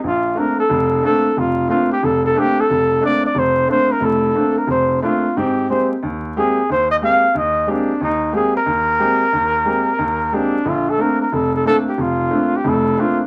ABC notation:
X:1
M:4/4
L:1/8
Q:"Swing" 1/4=181
K:Bb
V:1 name="Trumpet"
F2 B A3 A2 | F2 F G A A G A- | A2 d d c2 c B | A3 B c2 F2 |
G2 c z3 _A2 | c e f2 e2 D2 | E2 _A B4- B- | B6 D2 |
F A B B A A A G | F3 G A2 F z |]
V:2 name="Upright piano"
B,,,2 [A,B,CD] z F,,,2 [A,B,CD] z | F,,,2 [A,B,CD] z F,,,2 [A,B,CD] z | F,,,2 [A,B,CD] z F,,,2 [A,B,CD] z | [F,,,A,,]2 [A,B,CD] z F,,,2 [A,B,CD] z |
[_A,,C]2 [_A,B,CG] z E,,2 [A,B,CG] z | E,,2 [_A,B,CG] z E,,2 [A,B,CG] z | E,,2 [_A,B,CG] z E,,2 [A,B,CG] z | E,,2 [_A,B,CG] z E,,2 [A,B,CG] z |
[B,,,D,]2 [A,B,CD] z F,,,2 [A,B,CD] z | F,,,2 [A,B,CD] z [F,,,A,,]2 [A,B,CD] z |]